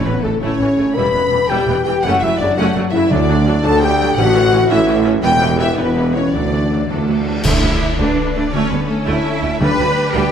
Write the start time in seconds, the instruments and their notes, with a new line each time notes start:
Already playing: timpani A2, harp A2 A4
0.03 double bass section A1, tuba A1, viola section E3 C#4, harp A3, violin section B4, flute B4
0.07 cello section A2, french horn section B3
0.21 double bass section A1, tuba A1, viola section C#3 A3, french horn section A3, violin section A4, harp A4, flute A4
0.25 cello section A2, violin section A4
0.40 double bass section A1, tuba A1, cello section A2, viola section A3 E4, french horn section C#4, harp E4, violin section C#5, flute C#5
0.59 double bass section A1, tuba A1, cello section A2, viola section E3 C#4, harp A4
0.77 double bass section A1, tuba A1, cello section A2, viola section C#3 A3, harp E4
0.94 double bass section E1, tuba E1, harp E2, viola section G3 E4, french horn section B4, violin section B5, flute B5
0.98 cello section E2
1.13 double bass section E1, tuba E1, cello section E2, viola section E3 B3, harp B3
1.31 double bass section E1, tuba E1, cello section E2, viola section E3 G3, harp G4
1.48 double bass section E1, tuba E1, cello section E2, viola section G3 E4, french horn section G4, harp B4, violin section G5, flute G5
1.67 double bass section E1, tuba E1, cello section E2, viola section E3 B3, harp G4
1.83 double bass section E1, tuba E1, cello section E2, viola section E3 G3, harp E4, french horn section G4, violin section G5, flute G5
2.02 tuba F#1, double bass section F#1, harp F#2, cello section F#2, viola section A3 C#4, french horn section F#4, violin section F#5, flute F#5
2.19 tuba F#1, double bass section F#1, harp A3, french horn section E4, violin section E5, flute E5
2.23 cello section F#2, viola section F#3 A3
2.38 tuba F#1, double bass section F#1, cello section F#2, viola section C#3 F#3, harp F#3, french horn section D4, violin section D5, flute D5
2.55 tuba F#1, double bass section F#1, cello section F#2, viola section C#4, french horn section F#4, harp A4, violin section F#5, flute F#5
2.59 viola section A3
2.75 tuba F#1, double bass section F#1, cello section F#2, viola section F#3 A3
2.90 tuba F#1, double bass section F#1, cello section F#2, viola section F#3, harp C#4, french horn section E4, violin section E5
2.94 viola section C#3, flute E5
3.08 cello section D2, tuba D2, double bass section D2, timpani D3, harp D3, viola section F#3 D4, french horn section D4, violin section D5, flute D5
3.28 viola section F#3 D4, harp D4
3.45 viola section F#3 D4, harp A4
3.63 double bass section D2, cello section D2, tuba D2, viola section F#3 D4, french horn section A4, harp D5, violin section A5, flute A5
3.80 viola section F#3 D4, french horn section G4, harp A4, violin section G5, flute G5
4.00 viola section F#3 D4, harp F#4
4.16 double bass section A1, tuba A1, cello section A2, timpani A2, harp A2, viola section E3 C#4, french horn section F#4, violin section F#5, flute F#5
4.33 viola section E3 C#4, harp A3
4.51 viola section E3 C#4, harp E4
4.69 tuba A1, double bass section A1, cello section A2, viola section E3 C#4, french horn section E4, harp A4, flute E5, violin section E5
4.86 viola section E3 C#4, harp E4
5.04 viola section E3 C#4, harp C#4
5.22 tuba E1, double bass section E1, cello section E2, viola section E3 B3, harp E3, violin section G5, flute G5
5.26 french horn section G4
5.40 viola section E3 B3, harp B3
5.58 viola section E3 B3, harp G4, flute E5, violin section E5
5.62 french horn section E4
5.77 tuba E1, double bass section E1, cello section E2, viola section E3 B3, french horn section B3, flute B4, harp B4, violin section B4
5.96 viola section E3 B3, harp G4
6.13 viola section E3 B3, french horn section C#4, harp E4, violin section C#5, flute C#5
6.32 double bass section D2, tuba D2, cello section D2, harp D3, viola section F#3 D4, french horn section D4, flute D5, violin section D5
6.51 viola section F#3 D4, harp D4
6.70 viola section F#3 D4, harp A4
6.88 double bass section D2, tuba D2, cello section E2 A3, viola section F#3 D4, violin section A4, harp D5
7.07 cello section D2, viola section F#3 D4, harp A4
7.25 cello section E2, viola section F#3 D4, harp F#4
7.43 double bass section D2, tuba D2, timpani D3, harp D3, viola section A3 D4, cello section E4, violin section E5, concert bass drum, crash
7.55 harp A3
7.62 double bass section D2, tuba D2, viola section G3, harp D4
7.73 harp A4
7.82 harp D4
7.90 harp D5
7.98 double bass section D2, tuba D2, viola section A3, cello section D4, violin section B4 D5, harp A5
8.09 harp D5
8.17 harp A4
8.26 harp D4
8.32 double bass section D2, tuba D2, viola section A3, cello section D4, harp A4, violin section D5
8.45 harp D4
8.51 double bass section D2, tuba D2, harp D3, viola section A3 C#4, cello section C#4, violin section A4 C#5
8.63 harp A3
8.70 double bass section D2, tuba D2, viola section G3, cello section B3, harp C#4, violin section B4
8.81 harp A4
8.88 cello section A3, harp C#4, violin section A4
8.99 harp C#5
9.04 double bass section D2, tuba D2, viola section A3, cello section E4, violin section A4 E5, harp A5
9.16 harp C#5
9.25 harp A4
9.34 harp C#4
9.41 double bass section D2, tuba D2, viola section A3, harp A4
9.51 harp C#4
9.58 double bass section D2, tuba D2, harp D3, timpani D3, viola section G3 D4, violin section G4 B5, cello section B4
9.69 harp G3
9.77 double bass section D2, tuba D2, viola section F#3, harp D4
9.88 harp B4
9.96 harp G4
10.05 harp D5
10.12 double bass section D2, tuba D2, viola section G3, cello section G4, violin section B4 G5, harp B5
10.23 harp G5